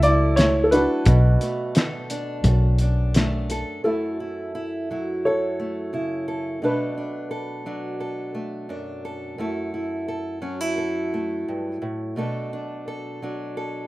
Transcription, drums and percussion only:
0.03 closed hi-hat
0.37 snare, closed hi-hat
0.72 closed hi-hat
1.06 kick, closed hi-hat
1.41 closed hi-hat
1.75 snare, closed hi-hat
2.10 closed hi-hat
2.44 kick, closed hi-hat
2.79 closed hi-hat
3.14 snare, closed hi-hat
3.50 closed hi-hat

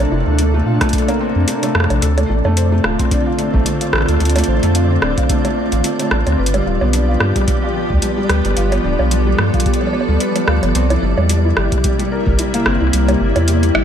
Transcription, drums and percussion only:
0.39 closed hi-hat
0.81 kick, cross-stick, closed hi-hat
0.89 closed hi-hat
0.93 kick, closed hi-hat
0.98 closed hi-hat
1.08 closed hi-hat, high bongo
1.48 closed hi-hat
1.63 closed hi-hat, high bongo
1.75 cross-stick
1.80 cross-stick
1.84 cross-stick
1.90 closed hi-hat, high bongo
2.02 closed hi-hat
2.18 closed hi-hat, high bongo
2.45 high bongo
2.57 closed hi-hat
2.84 cross-stick
2.99 kick, closed hi-hat
3.11 kick, closed hi-hat
3.39 closed hi-hat
3.54 kick
3.66 closed hi-hat
3.81 closed hi-hat
3.93 cross-stick
3.96 cross-stick
3.98 cross-stick
4.01 cross-stick
4.06 cross-stick, closed hi-hat
4.20 closed hi-hat
4.25 closed hi-hat
4.29 closed hi-hat
4.36 closed hi-hat, high bongo
4.38 closed hi-hat
4.44 closed hi-hat
4.63 closed hi-hat
4.75 closed hi-hat
5.02 cross-stick
5.17 kick, closed hi-hat
5.29 kick, closed hi-hat
5.45 closed hi-hat, high bongo
5.72 closed hi-hat
5.84 closed hi-hat
6.00 closed hi-hat, high bongo
6.02 high bongo
6.07 cross-stick, high bongo
6.27 closed hi-hat, high bongo
6.46 closed hi-hat
6.54 closed hi-hat, high bongo
6.81 high bongo
6.93 closed hi-hat
7.20 cross-stick
7.36 kick, closed hi-hat
7.48 kick, closed hi-hat
7.90 kick
8.02 closed hi-hat
8.30 cross-stick, closed hi-hat
8.45 closed hi-hat
8.57 closed hi-hat
8.72 closed hi-hat, high bongo
8.99 high bongo
9.11 closed hi-hat
9.39 cross-stick
9.54 kick, closed hi-hat
9.60 closed hi-hat
9.66 kick, closed hi-hat
9.74 closed hi-hat
9.81 high bongo
9.87 high bongo
9.93 high bongo
10.01 high bongo
10.20 closed hi-hat
10.36 closed hi-hat, high bongo
10.48 cross-stick
10.63 closed hi-hat, high bongo
10.75 closed hi-hat
10.90 closed hi-hat, high bongo
11.18 high bongo
11.29 closed hi-hat
11.57 cross-stick
11.72 kick, closed hi-hat
11.84 kick, closed hi-hat
11.99 closed hi-hat
12.27 kick
12.39 closed hi-hat
12.54 closed hi-hat
12.66 cross-stick
12.93 closed hi-hat
13.09 closed hi-hat, high bongo
13.36 closed hi-hat, high bongo
13.48 closed hi-hat
13.63 closed hi-hat
13.75 cross-stick

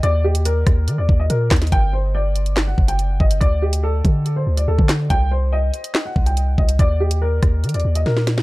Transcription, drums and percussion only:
0.03 closed hi-hat
0.35 closed hi-hat
0.45 closed hi-hat
0.67 kick, cross-stick, closed hi-hat
0.88 closed hi-hat
1.09 kick
1.30 closed hi-hat
1.51 kick, cross-stick, snare, clap, closed hi-hat
1.56 closed hi-hat
1.62 snare, closed hi-hat
1.67 closed hi-hat
1.72 kick, closed hi-hat
2.36 closed hi-hat
2.46 closed hi-hat
2.57 snare, clap
2.78 kick
2.88 closed hi-hat
2.99 closed hi-hat
3.20 kick
3.31 closed hi-hat
3.41 kick, closed hi-hat
3.73 closed hi-hat
4.05 kick, closed hi-hat
4.26 closed hi-hat
4.57 closed hi-hat
4.79 kick
4.89 snare, clap, closed hi-hat
5.10 kick, closed hi-hat
5.74 closed hi-hat
5.84 closed hi-hat
5.95 snare, clap
6.16 kick
6.26 closed hi-hat
6.37 closed hi-hat
6.58 kick
6.69 closed hi-hat
6.79 kick, closed hi-hat
7.11 closed hi-hat
7.43 kick, cross-stick, closed hi-hat
7.64 closed hi-hat
7.69 closed hi-hat
7.74 closed hi-hat
7.80 closed hi-hat
7.95 closed hi-hat
8.06 snare
8.17 snare
8.27 snare, closed hi-hat
8.38 snare

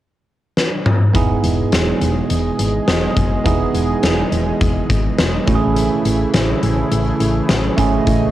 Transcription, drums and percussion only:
0.57 snare
0.86 mid tom
1.15 kick, closed hi-hat
1.44 closed hi-hat
1.72 snare, closed hi-hat
2.02 closed hi-hat
2.30 closed hi-hat
2.59 closed hi-hat
2.88 snare, closed hi-hat
3.17 kick, closed hi-hat
3.46 kick, closed hi-hat
3.75 closed hi-hat
4.03 snare, closed hi-hat
4.32 closed hi-hat
4.61 kick, closed hi-hat
4.90 kick, closed hi-hat
5.19 snare, closed hi-hat
5.47 kick, closed hi-hat
5.76 closed hi-hat
6.05 closed hi-hat
6.34 snare, closed hi-hat
6.63 closed hi-hat
6.91 closed hi-hat
7.20 closed hi-hat
7.49 snare, closed hi-hat
7.78 kick, closed hi-hat
8.07 kick, closed hi-hat

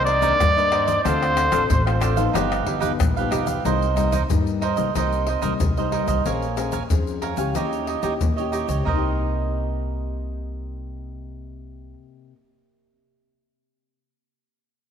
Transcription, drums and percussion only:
0.07 pandeiro
0.22 pandeiro, shaker, surdo
0.40 pandeiro, tamborim, shaker, surdo
0.58 pandeiro, shaker
0.72 pandeiro, tamborim
0.88 pandeiro, shaker, surdo
1.05 pandeiro, tamborim, shaker, surdo
1.23 pandeiro, tamborim, shaker
1.37 pandeiro, tamborim, shaker
1.52 pandeiro, tamborim, shaker, surdo
1.70 pandeiro, shaker, surdo
1.87 pandeiro, tamborim, shaker
2.01 pandeiro, tamborim, shaker, surdo
2.17 pandeiro, shaker
2.35 pandeiro, tamborim, shaker, surdo
2.52 pandeiro, tamborim, shaker
2.66 pandeiro
2.82 pandeiro, shaker, surdo
3.00 pandeiro, tamborim, shaker, surdo
3.17 pandeiro, shaker
3.32 pandeiro, tamborim, shaker
3.47 pandeiro, shaker, surdo
3.65 pandeiro, shaker, surdo
3.82 pandeiro, shaker
3.97 pandeiro, shaker, surdo
4.12 pandeiro, shaker, surdo
4.30 pandeiro, shaker, surdo
4.47 pandeiro, shaker
4.62 pandeiro, surdo
4.77 pandeiro, shaker
4.95 pandeiro, shaker, surdo
5.13 pandeiro, shaker
5.27 pandeiro
5.42 pandeiro, shaker, surdo
5.60 pandeiro, shaker, surdo
5.77 pandeiro, shaker
5.92 pandeiro
6.08 pandeiro, shaker, surdo
6.26 pandeiro, shaker, surdo
6.42 pandeiro, shaker
6.57 pandeiro, shaker
6.72 pandeiro, shaker, surdo
6.90 pandeiro, shaker, surdo
7.07 pandeiro, shaker
7.22 pandeiro, surdo
7.37 pandeiro, shaker
7.55 pandeiro, shaker, surdo
7.73 pandeiro, shaker
7.87 pandeiro
8.03 pandeiro, shaker, surdo
8.21 pandeiro, shaker, surdo
8.38 pandeiro, shaker
8.53 pandeiro, shaker
8.69 pandeiro, shaker, surdo
8.86 surdo

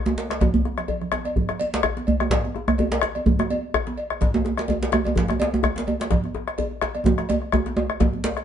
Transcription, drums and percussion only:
0.06 djembe slap, djembe tone, high conga
0.17 djembe slap
0.30 bombo rim, djembe slap, djembe tone
0.41 bombo low, cowbell, djembe slap, djembe tone, low conga, djembe bass
0.54 djembe slap, high conga, djembe bass
0.65 bombo rim, djembe slap, djembe tone
0.77 bombo rim, djembe slap, low conga
0.88 cowbell, low conga, djembe bass
1.01 bombo rim, djembe slap, low conga
1.12 bombo rim, djembe slap, high conga, djembe tone
1.25 bombo rim, cowbell, djembe slap, high conga
1.36 bombo low, djembe bass, low conga
1.49 bombo rim, djembe slap, djembe tone
1.60 cowbell, djembe slap, high conga
1.74 djembe slap
1.83 bombo rim, djembe slap, djembe tone, djembe bass
1.97 djembe slap, high conga
2.07 cowbell, djembe slap, djembe bass
2.20 bombo rim, djembe tone
2.30 bombo low, cowbell, djembe slap, djembe bass, low conga
2.44 bombo rim, high conga
2.55 bombo rim, djembe tone
2.68 bombo rim, djembe slap, djembe bass
2.78 cowbell, djembe tone, high conga, djembe bass
2.92 djembe slap
3.02 bombo rim, djembe slap, djembe tone
3.15 bombo rim, cowbell, high conga
3.26 bombo low, djembe bass, low conga
3.39 bombo rim, djembe slap, djembe tone
3.50 cowbell, high conga
3.74 bombo rim, djembe slap, djembe tone, djembe bass
3.87 djembe slap, high conga
3.98 cowbell, djembe slap
4.10 bombo rim, djembe tone
4.21 bombo low, cowbell, djembe slap, low conga, djembe bass
4.34 bombo rim, high conga, djembe tone
4.45 bombo rim, djembe tone
4.57 bombo rim, djembe slap
4.68 cowbell, high conga, djembe tone, djembe bass
4.81 djembe slap
4.92 bombo rim, djembe slap, djembe tone
4.94 djembe tone
5.04 bombo rim, cowbell, high conga, djembe tone
5.15 bombo low, djembe slap, low conga, djembe bass
5.28 bombo rim, djembe slap, djembe tone
5.30 djembe tone
5.40 cowbell, djembe slap, high conga
5.42 djembe slap
5.54 djembe tone
5.63 bombo rim, djembe slap, djembe tone, djembe bass
5.65 djembe tone
5.76 djembe slap, high conga
5.78 djembe slap
5.87 cowbell, djembe slap, djembe tone
6.00 bombo rim, djembe slap, djembe tone
6.11 bombo low, cowbell, djembe slap, djembe bass, low conga
6.24 bombo rim, high conga
6.35 bombo rim, djembe tone
6.48 bombo rim, djembe slap
6.58 cowbell, high conga, djembe bass
6.71 djembe slap
6.81 bombo rim, djembe slap, djembe tone
6.95 bombo rim, cowbell, high conga
7.05 bombo low, djembe slap, djembe tone, djembe bass, low conga
7.18 bombo rim, djembe slap, djembe tone
7.29 bombo rim, cowbell, high conga, djembe tone
7.42 bombo rim, djembe slap
7.52 bombo rim, djembe slap, djembe tone, djembe bass
7.66 djembe slap, high conga
7.77 bombo rim, cowbell, djembe tone
7.90 bombo rim, djembe tone
8.00 bombo low, cowbell, djembe slap, djembe tone, low conga, djembe bass
8.13 high conga
8.24 djembe slap, djembe tone, high conga
8.37 bombo rim, djembe slap, high conga

